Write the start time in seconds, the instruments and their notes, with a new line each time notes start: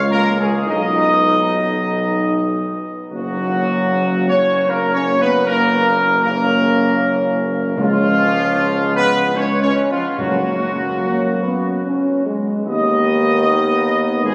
Already playing: tuba C#2, french horn section G#3 F4
0.11 trombone section A#3, trumpet section A#4
0.40 trombone section G#3, trumpet section G#4
0.66 tuba B1, french horn section B3 D#4, trombone section D#4, trumpet section D#5
3.10 tuba F#1, trombone section F#3, french horn section A#3 C#4, trumpet section F#4
4.27 trombone section C#4, trumpet section C#5
4.69 trombone section A#3, french horn section A#3 C#4, trumpet section A#4
4.94 trombone section C#4, trumpet section C#5
5.21 trombone section B3, trumpet section B4
5.46 trombone section A#3, french horn section A#3 C#4, trumpet section A#4
6.23 trombone section A#3, french horn section A#3 C#4, trumpet section A#4
7.76 tuba C#2, timpani C#3, trombone section F3, french horn section G#3 C#4, trumpet section F4
8.94 trombone section B3, trumpet section B4
9.36 french horn section G#3 C#4, trombone section C#4, trumpet section C#5
9.63 trombone section C#4, trumpet section C#5
9.90 trombone section F3, trumpet section F4
10.18 timpani F#2, tuba F#2, trombone section F#3, french horn section A#3 C#4, trumpet section F#4
11.02 french horn section A#3
11.42 french horn section B3
11.86 french horn section C#4
12.26 french horn section G#3
12.66 tuba D#2, trombone section D#3, french horn section B3, trumpet section D#5
14.23 tuba G#1, trombone section G#2, trumpet section G#4